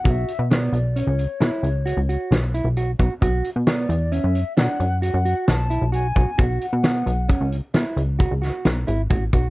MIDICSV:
0, 0, Header, 1, 5, 480
1, 0, Start_track
1, 0, Tempo, 452489
1, 50, Time_signature, 7, 2, 24, 8
1, 10078, End_track
2, 0, Start_track
2, 0, Title_t, "Flute"
2, 0, Program_c, 0, 73
2, 62, Note_on_c, 0, 78, 76
2, 98, Note_on_c, 0, 76, 83
2, 109, Note_off_c, 0, 78, 0
2, 536, Note_off_c, 0, 76, 0
2, 554, Note_on_c, 0, 74, 72
2, 1031, Note_on_c, 0, 73, 74
2, 1047, Note_off_c, 0, 74, 0
2, 2463, Note_off_c, 0, 73, 0
2, 3888, Note_on_c, 0, 74, 73
2, 4366, Note_on_c, 0, 76, 78
2, 4382, Note_off_c, 0, 74, 0
2, 4841, Note_off_c, 0, 76, 0
2, 4848, Note_on_c, 0, 78, 83
2, 5298, Note_off_c, 0, 78, 0
2, 5336, Note_on_c, 0, 78, 80
2, 5783, Note_off_c, 0, 78, 0
2, 5811, Note_on_c, 0, 81, 95
2, 6261, Note_off_c, 0, 81, 0
2, 6298, Note_on_c, 0, 80, 96
2, 6773, Note_off_c, 0, 80, 0
2, 6773, Note_on_c, 0, 80, 78
2, 6811, Note_on_c, 0, 78, 85
2, 6821, Note_off_c, 0, 80, 0
2, 7013, Note_off_c, 0, 78, 0
2, 7019, Note_on_c, 0, 78, 78
2, 7935, Note_off_c, 0, 78, 0
2, 10078, End_track
3, 0, Start_track
3, 0, Title_t, "Clean electric guitar"
3, 0, Program_c, 1, 27
3, 46, Note_on_c, 1, 66, 75
3, 335, Note_off_c, 1, 66, 0
3, 536, Note_on_c, 1, 59, 72
3, 822, Note_off_c, 1, 59, 0
3, 1017, Note_on_c, 1, 61, 65
3, 1304, Note_off_c, 1, 61, 0
3, 1490, Note_on_c, 1, 64, 66
3, 1779, Note_off_c, 1, 64, 0
3, 1969, Note_on_c, 1, 66, 79
3, 2114, Note_off_c, 1, 66, 0
3, 2217, Note_on_c, 1, 66, 67
3, 2504, Note_off_c, 1, 66, 0
3, 2698, Note_on_c, 1, 64, 74
3, 2841, Note_off_c, 1, 64, 0
3, 2939, Note_on_c, 1, 66, 68
3, 3082, Note_off_c, 1, 66, 0
3, 3173, Note_on_c, 1, 66, 61
3, 3318, Note_off_c, 1, 66, 0
3, 3415, Note_on_c, 1, 66, 84
3, 3703, Note_off_c, 1, 66, 0
3, 3897, Note_on_c, 1, 59, 72
3, 4185, Note_off_c, 1, 59, 0
3, 4369, Note_on_c, 1, 61, 70
3, 4659, Note_off_c, 1, 61, 0
3, 4846, Note_on_c, 1, 62, 66
3, 5137, Note_off_c, 1, 62, 0
3, 5326, Note_on_c, 1, 66, 74
3, 5473, Note_off_c, 1, 66, 0
3, 5572, Note_on_c, 1, 66, 70
3, 5861, Note_off_c, 1, 66, 0
3, 6049, Note_on_c, 1, 64, 74
3, 6195, Note_off_c, 1, 64, 0
3, 6283, Note_on_c, 1, 66, 75
3, 6431, Note_off_c, 1, 66, 0
3, 6531, Note_on_c, 1, 66, 60
3, 6677, Note_off_c, 1, 66, 0
3, 6768, Note_on_c, 1, 66, 77
3, 7058, Note_off_c, 1, 66, 0
3, 7249, Note_on_c, 1, 59, 66
3, 7539, Note_off_c, 1, 59, 0
3, 7729, Note_on_c, 1, 61, 71
3, 8019, Note_off_c, 1, 61, 0
3, 8210, Note_on_c, 1, 64, 63
3, 8499, Note_off_c, 1, 64, 0
3, 8686, Note_on_c, 1, 66, 77
3, 8832, Note_off_c, 1, 66, 0
3, 8929, Note_on_c, 1, 66, 63
3, 9218, Note_off_c, 1, 66, 0
3, 9413, Note_on_c, 1, 64, 69
3, 9557, Note_off_c, 1, 64, 0
3, 9653, Note_on_c, 1, 66, 60
3, 9797, Note_off_c, 1, 66, 0
3, 9900, Note_on_c, 1, 66, 62
3, 10041, Note_off_c, 1, 66, 0
3, 10078, End_track
4, 0, Start_track
4, 0, Title_t, "Analog synth bass"
4, 0, Program_c, 2, 38
4, 53, Note_on_c, 2, 35, 96
4, 267, Note_off_c, 2, 35, 0
4, 412, Note_on_c, 2, 47, 82
4, 735, Note_off_c, 2, 47, 0
4, 768, Note_on_c, 2, 35, 82
4, 1093, Note_off_c, 2, 35, 0
4, 1134, Note_on_c, 2, 37, 90
4, 1348, Note_off_c, 2, 37, 0
4, 1491, Note_on_c, 2, 47, 77
4, 1599, Note_off_c, 2, 47, 0
4, 1727, Note_on_c, 2, 37, 82
4, 2053, Note_off_c, 2, 37, 0
4, 2088, Note_on_c, 2, 37, 87
4, 2306, Note_off_c, 2, 37, 0
4, 2449, Note_on_c, 2, 35, 84
4, 2775, Note_off_c, 2, 35, 0
4, 2805, Note_on_c, 2, 35, 83
4, 3132, Note_off_c, 2, 35, 0
4, 3177, Note_on_c, 2, 35, 98
4, 3284, Note_off_c, 2, 35, 0
4, 3421, Note_on_c, 2, 35, 93
4, 3634, Note_off_c, 2, 35, 0
4, 3775, Note_on_c, 2, 47, 82
4, 4099, Note_off_c, 2, 47, 0
4, 4127, Note_on_c, 2, 40, 96
4, 4455, Note_off_c, 2, 40, 0
4, 4495, Note_on_c, 2, 42, 92
4, 4711, Note_off_c, 2, 42, 0
4, 4855, Note_on_c, 2, 47, 79
4, 4964, Note_off_c, 2, 47, 0
4, 5089, Note_on_c, 2, 42, 82
4, 5416, Note_off_c, 2, 42, 0
4, 5450, Note_on_c, 2, 42, 92
4, 5669, Note_off_c, 2, 42, 0
4, 5813, Note_on_c, 2, 35, 87
4, 6138, Note_off_c, 2, 35, 0
4, 6169, Note_on_c, 2, 35, 78
4, 6496, Note_off_c, 2, 35, 0
4, 6535, Note_on_c, 2, 35, 95
4, 6644, Note_off_c, 2, 35, 0
4, 6773, Note_on_c, 2, 35, 96
4, 6990, Note_off_c, 2, 35, 0
4, 7136, Note_on_c, 2, 47, 84
4, 7460, Note_off_c, 2, 47, 0
4, 7491, Note_on_c, 2, 35, 88
4, 7817, Note_off_c, 2, 35, 0
4, 7859, Note_on_c, 2, 37, 90
4, 8073, Note_off_c, 2, 37, 0
4, 8213, Note_on_c, 2, 47, 78
4, 8322, Note_off_c, 2, 47, 0
4, 8449, Note_on_c, 2, 37, 83
4, 8775, Note_off_c, 2, 37, 0
4, 8816, Note_on_c, 2, 37, 79
4, 9031, Note_off_c, 2, 37, 0
4, 9178, Note_on_c, 2, 35, 82
4, 9391, Note_off_c, 2, 35, 0
4, 9420, Note_on_c, 2, 32, 81
4, 9633, Note_off_c, 2, 32, 0
4, 9662, Note_on_c, 2, 33, 78
4, 9874, Note_off_c, 2, 33, 0
4, 9898, Note_on_c, 2, 35, 85
4, 10078, Note_off_c, 2, 35, 0
4, 10078, End_track
5, 0, Start_track
5, 0, Title_t, "Drums"
5, 56, Note_on_c, 9, 36, 92
5, 60, Note_on_c, 9, 42, 69
5, 162, Note_off_c, 9, 36, 0
5, 166, Note_off_c, 9, 42, 0
5, 302, Note_on_c, 9, 42, 59
5, 408, Note_off_c, 9, 42, 0
5, 545, Note_on_c, 9, 38, 100
5, 545, Note_on_c, 9, 42, 74
5, 651, Note_off_c, 9, 38, 0
5, 651, Note_off_c, 9, 42, 0
5, 780, Note_on_c, 9, 42, 49
5, 886, Note_off_c, 9, 42, 0
5, 1022, Note_on_c, 9, 42, 73
5, 1128, Note_off_c, 9, 42, 0
5, 1260, Note_on_c, 9, 42, 55
5, 1366, Note_off_c, 9, 42, 0
5, 1501, Note_on_c, 9, 38, 100
5, 1501, Note_on_c, 9, 42, 76
5, 1608, Note_off_c, 9, 38, 0
5, 1608, Note_off_c, 9, 42, 0
5, 1742, Note_on_c, 9, 42, 53
5, 1848, Note_off_c, 9, 42, 0
5, 1980, Note_on_c, 9, 42, 76
5, 2086, Note_off_c, 9, 42, 0
5, 2219, Note_on_c, 9, 42, 57
5, 2325, Note_off_c, 9, 42, 0
5, 2463, Note_on_c, 9, 38, 105
5, 2463, Note_on_c, 9, 42, 77
5, 2569, Note_off_c, 9, 38, 0
5, 2569, Note_off_c, 9, 42, 0
5, 2699, Note_on_c, 9, 42, 57
5, 2805, Note_off_c, 9, 42, 0
5, 2934, Note_on_c, 9, 42, 68
5, 3041, Note_off_c, 9, 42, 0
5, 3177, Note_on_c, 9, 36, 69
5, 3178, Note_on_c, 9, 42, 64
5, 3283, Note_off_c, 9, 36, 0
5, 3284, Note_off_c, 9, 42, 0
5, 3417, Note_on_c, 9, 36, 85
5, 3418, Note_on_c, 9, 42, 76
5, 3523, Note_off_c, 9, 36, 0
5, 3524, Note_off_c, 9, 42, 0
5, 3654, Note_on_c, 9, 42, 64
5, 3761, Note_off_c, 9, 42, 0
5, 3893, Note_on_c, 9, 38, 110
5, 3893, Note_on_c, 9, 42, 83
5, 3999, Note_off_c, 9, 38, 0
5, 3999, Note_off_c, 9, 42, 0
5, 4134, Note_on_c, 9, 42, 54
5, 4240, Note_off_c, 9, 42, 0
5, 4373, Note_on_c, 9, 42, 74
5, 4479, Note_off_c, 9, 42, 0
5, 4614, Note_on_c, 9, 42, 60
5, 4720, Note_off_c, 9, 42, 0
5, 4852, Note_on_c, 9, 38, 100
5, 4852, Note_on_c, 9, 42, 81
5, 4958, Note_off_c, 9, 38, 0
5, 4958, Note_off_c, 9, 42, 0
5, 5095, Note_on_c, 9, 42, 52
5, 5201, Note_off_c, 9, 42, 0
5, 5336, Note_on_c, 9, 42, 73
5, 5442, Note_off_c, 9, 42, 0
5, 5576, Note_on_c, 9, 42, 54
5, 5682, Note_off_c, 9, 42, 0
5, 5812, Note_on_c, 9, 38, 98
5, 5812, Note_on_c, 9, 42, 72
5, 5918, Note_off_c, 9, 38, 0
5, 5918, Note_off_c, 9, 42, 0
5, 6056, Note_on_c, 9, 42, 58
5, 6162, Note_off_c, 9, 42, 0
5, 6294, Note_on_c, 9, 42, 58
5, 6400, Note_off_c, 9, 42, 0
5, 6533, Note_on_c, 9, 42, 58
5, 6535, Note_on_c, 9, 36, 73
5, 6639, Note_off_c, 9, 42, 0
5, 6642, Note_off_c, 9, 36, 0
5, 6774, Note_on_c, 9, 42, 64
5, 6777, Note_on_c, 9, 36, 88
5, 6881, Note_off_c, 9, 42, 0
5, 6883, Note_off_c, 9, 36, 0
5, 7017, Note_on_c, 9, 42, 58
5, 7123, Note_off_c, 9, 42, 0
5, 7255, Note_on_c, 9, 38, 92
5, 7255, Note_on_c, 9, 42, 76
5, 7361, Note_off_c, 9, 38, 0
5, 7361, Note_off_c, 9, 42, 0
5, 7497, Note_on_c, 9, 42, 61
5, 7603, Note_off_c, 9, 42, 0
5, 7735, Note_on_c, 9, 42, 82
5, 7739, Note_on_c, 9, 36, 98
5, 7841, Note_off_c, 9, 42, 0
5, 7845, Note_off_c, 9, 36, 0
5, 7980, Note_on_c, 9, 42, 59
5, 8086, Note_off_c, 9, 42, 0
5, 8214, Note_on_c, 9, 38, 110
5, 8214, Note_on_c, 9, 42, 72
5, 8320, Note_off_c, 9, 38, 0
5, 8320, Note_off_c, 9, 42, 0
5, 8460, Note_on_c, 9, 42, 53
5, 8566, Note_off_c, 9, 42, 0
5, 8696, Note_on_c, 9, 42, 76
5, 8699, Note_on_c, 9, 36, 94
5, 8802, Note_off_c, 9, 42, 0
5, 8805, Note_off_c, 9, 36, 0
5, 8945, Note_on_c, 9, 38, 30
5, 8945, Note_on_c, 9, 42, 52
5, 9051, Note_off_c, 9, 38, 0
5, 9051, Note_off_c, 9, 42, 0
5, 9178, Note_on_c, 9, 38, 98
5, 9178, Note_on_c, 9, 42, 77
5, 9284, Note_off_c, 9, 38, 0
5, 9284, Note_off_c, 9, 42, 0
5, 9419, Note_on_c, 9, 42, 62
5, 9525, Note_off_c, 9, 42, 0
5, 9659, Note_on_c, 9, 36, 73
5, 9660, Note_on_c, 9, 42, 65
5, 9765, Note_off_c, 9, 36, 0
5, 9767, Note_off_c, 9, 42, 0
5, 9899, Note_on_c, 9, 36, 66
5, 9901, Note_on_c, 9, 42, 58
5, 10005, Note_off_c, 9, 36, 0
5, 10007, Note_off_c, 9, 42, 0
5, 10078, End_track
0, 0, End_of_file